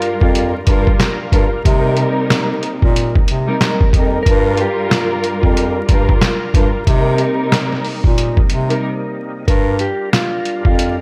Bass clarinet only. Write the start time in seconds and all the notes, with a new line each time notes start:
0.21 F2
0.67 G2
1.32 G2
1.65 C3
2.82 A#2
3.28 C3
3.93 F2
4.26 G2
5.43 F2
5.89 G2
6.54 G2
6.87 C3
8.04 A#2
8.50 C3
9.48 G2
10.65 F2